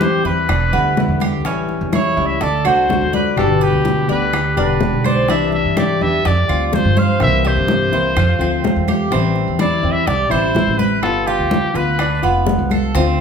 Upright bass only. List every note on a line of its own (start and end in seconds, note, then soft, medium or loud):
0.00 0.24 E2 medium
0.25 0.48 E2 medium
0.49 0.72 E1 loud
0.73 1.07 D2 medium
1.08 1.44 E2 medium
1.44 1.79 A1 medium
1.81 2.15 E2 medium
2.17 2.40 C#2 loud
2.41 2.64 D2 loud
2.65 2.99 C2 medium
3.01 3.38 D2 medium
3.37 3.71 G1 medium
3.72 4.07 D2 medium
4.09 4.54 D2 medium
4.58 4.91 E1 medium
4.93 5.29 B1 medium
5.29 5.63 C2 medium
5.65 5.99 G2 medium
6.01 6.24 E2 loud
6.26 6.48 F2 medium
6.49 6.83 D2 medium
6.85 7.23 G2 loud
7.21 7.55 C2 medium
7.57 7.91 G2 medium
7.92 8.15 C2 medium
8.16 8.39 F2 loud
8.39 8.74 D2 medium
8.76 9.14 E2 medium
9.12 9.46 A1 medium
9.48 9.82 E2 medium
9.83 10.06 E2 medium
10.07 10.30 C2 loud
10.31 10.66 A1 medium
10.67 11.03 A1 medium
11.03 11.37 G1 medium
11.39 11.73 D2 medium
11.75 12.20 D2 medium
12.23 12.57 F1 medium
12.59 12.93 C2 medium
12.95 13.18 D2 medium